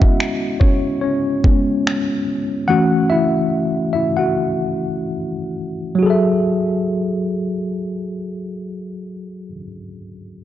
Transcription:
Already playing: G#3 B3 C#4 E4 F#4 D#5 E5 F#5
0.02 kick
0.20 finger snap
0.60 C#4 C#5, kick
1.01 C#4 C#5
1.44 G#3 B3 C#4, kick
1.87 finger snap
2.68 E3 A3 C#4 F#4 F#5
3.10 E4 E5
3.93 E4 E5
4.17 F#4 F#5
5.95 F#3 F#4
6.03 G#4 A4
6.10 E5

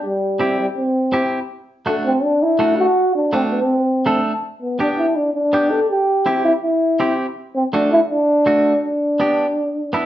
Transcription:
0.04 G3
0.40 C4 E4 G4
0.59 G3
0.77 C4
1.13 C4 E4 G4
1.86 A3 D4 F#4
2.05 C4
2.23 D4
2.42 E4
2.59 A3 D4 F#4
2.78 F#4
3.15 D4
3.33 A3 C4 D4 F#4
3.51 C4
4.06 A3 D4 A4
4.62 B3
4.79 B3 D4 G4
4.98 E4
5.16 D4
5.34 D4
5.53 B3 D4 G4
5.71 A4
5.89 G4
6.26 C4 E4 G4
6.45 E4
6.63 E4
7.00 C4 E4 G4
7.55 C4
7.73 A3 D4 F#4
7.92 E4
8.10 D4
8.46 A3 D4 F#4
8.84 D4
9.20 B3 D4 G4
9.93 B3 D4 E4

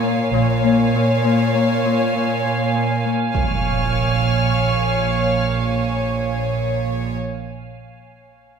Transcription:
Already playing: A#2 C#5 F5 G#5
0.03 A#3
0.31 A#1 A#2 C#5 F5 G#5
0.64 A#3
0.95 A#2
1.24 A#2
1.55 A#3
1.85 A#2
2.15 A#2
2.45 A#2
2.75 A#2
3.05 A#3
3.34 A#1 A#2 C#5 F5 G#5 C#6 F6, impact

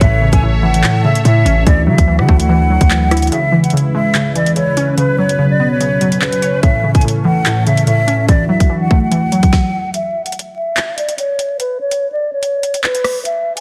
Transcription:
0.01 A1 A2 A3 A4 C#5 E5, kick, closed hi-hat
0.22 C#3
0.33 A1 G#5, kick, closed hi-hat
0.43 A2
0.63 G#1 E3 F#5
0.74 A1, closed hi-hat
0.84 A2, clap
1.04 C#3 E5
1.15 closed hi-hat
1.25 A2 E5, closed hi-hat
1.45 A1 C#4, closed hi-hat
1.67 D2 D3 E3 D4 E4 F#4 D5, kick, closed hi-hat
1.87 D3 F#3 E5
1.98 D2, kick, closed hi-hat
2.08 E3
2.19 D3 F#5, cross-stick
2.29 D2 A3, kick
2.40 F#5, closed hi-hat
2.49 E3
2.70 F#3
2.81 D2, kick, closed hi-hat
2.91 E3, clap, closed hi-hat
3.11 E4, cross-stick, closed hi-hat
3.17 closed hi-hat
3.22 closed hi-hat
3.27 closed hi-hat
3.32 C#3 G#3 E4 B4 E5, closed hi-hat
3.52 E3
3.64 F#5, closed hi-hat
3.70 C#3, closed hi-hat
3.77 closed hi-hat
3.94 G#3 E5
4.15 C#3, clap, closed hi-hat
4.35 E3 D5, closed hi-hat
4.46 closed hi-hat
4.56 C#3 C#5, closed hi-hat
4.77 C#4, closed hi-hat
4.97 B2 C#3 F#3 C#4 B4, closed hi-hat
5.18 F#3 C#5
5.29 closed hi-hat
5.39 C#3
5.50 D5
5.60 B3
5.71 C#5
5.80 C#3, closed hi-hat
6.01 F#3, closed hi-hat
6.12 closed hi-hat
6.22 C#3 B4, clap
6.33 closed hi-hat
6.42 C#5, closed hi-hat
6.63 A2 E3 A4 E5, kick, closed hi-hat
6.84 C#3
6.95 G#5, kick, closed hi-hat
7.01 A2, closed hi-hat
7.08 closed hi-hat
7.25 E3 F#5
7.46 A2, clap, closed hi-hat
7.66 C#3 E5, closed hi-hat
7.77 closed hi-hat
7.87 A2 E5, closed hi-hat
8.08 C#4, closed hi-hat
8.29 D2 D3 E3 E4 F#4 D5, kick, closed hi-hat
8.49 F#3 E5
8.60 kick, closed hi-hat
8.70 E3
8.81 F#5
8.91 A3, kick
9.02 F#5
9.11 E3, closed hi-hat
9.32 F#3, closed hi-hat
9.43 kick, closed hi-hat
9.53 kick, snare
9.94 E5, closed hi-hat
10.26 F#5, closed hi-hat
10.32 closed hi-hat
10.39 closed hi-hat
10.56 E5
10.77 clap, closed hi-hat
10.98 D5, closed hi-hat
11.09 closed hi-hat
11.18 C#5, closed hi-hat
11.39 closed hi-hat
11.60 B4, closed hi-hat
11.81 C#5
11.91 closed hi-hat
12.12 D5
12.33 C#5
12.43 closed hi-hat
12.63 closed hi-hat
12.74 closed hi-hat
12.84 B4, clap
12.95 closed hi-hat
13.04 cross-stick, open hi-hat
13.25 E5, closed hi-hat
13.57 G#5, closed hi-hat

